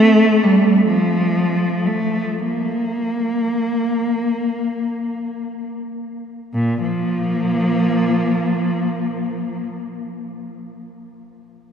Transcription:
0.00 0.44 A3 loud
0.44 0.88 G3 medium
0.88 1.84 F3 medium
1.86 2.41 A3 medium
2.40 5.74 A#3 medium
6.55 6.83 A#2 medium
6.82 9.57 F3 medium
6.82 9.83 A#3 medium

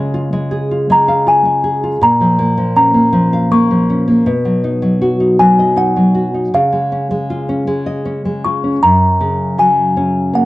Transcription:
0.00 1.98 C#3 medium
0.00 0.31 G#3 medium
0.00 0.13 F4 soft
0.00 0.50 G#4 medium
0.00 0.29 F5 soft
0.14 0.70 F4 soft
0.33 0.89 G#3 medium
0.51 1.62 G#4 medium
0.71 1.25 F4 soft
0.90 1.44 G#3 medium
0.90 1.29 A#5 medium
1.08 1.99 F5 soft
1.26 1.82 F4 medium
1.26 2.05 G#5 medium
1.45 2.00 G#3 soft
1.64 2.00 G#4 medium
1.83 2.02 F4 soft
2.01 4.23 A#2 medium
2.01 2.75 A#5 medium
2.21 2.56 F3 soft
2.39 2.93 A#3 medium
2.58 3.11 F3 medium
2.76 3.88 C#4 medium
2.76 3.54 A#5 medium
2.94 3.50 A#3 soft
3.13 3.69 F3 medium
3.33 4.24 F5 soft
3.51 4.06 A#3 medium
3.51 4.04 C#6 medium
3.70 4.25 F3 soft
3.90 4.26 C#4 soft
4.08 4.26 A#3 soft
4.26 6.48 B2 medium
4.45 4.81 F#3 soft
4.64 5.19 D#4 soft
4.82 5.38 F#3 medium
5.01 6.14 F#4 medium
5.20 5.75 D#4 soft
5.39 5.95 F#3 medium
5.39 5.78 G#5 medium
5.59 6.50 D#5 medium
5.77 6.33 D#4 medium
5.77 6.55 F#5 medium
5.97 6.51 F#3 soft
6.15 6.52 F#4 soft
6.35 6.52 D#4 soft
6.54 8.78 C#3 medium
6.54 8.41 F5 medium
6.73 7.10 G#3 soft
6.92 7.48 C#4 soft
7.11 7.66 G#3 soft
7.30 8.44 F4 medium
7.49 8.04 C#4 soft
7.67 8.24 G#3 medium
7.86 8.79 D#5 soft
8.05 8.62 C#4 soft
8.25 8.80 G#3 soft
8.44 8.81 F4 medium
8.44 8.83 C#6 medium
8.64 8.82 C#4 soft
8.83 10.45 F#2 medium
8.83 9.60 A#5 medium
9.21 10.45 C#3 soft
9.58 10.45 F#3 soft
9.58 10.36 G#5 medium
9.97 10.45 C#4 medium
10.33 10.45 A#3 soft
10.33 10.45 F#5 medium

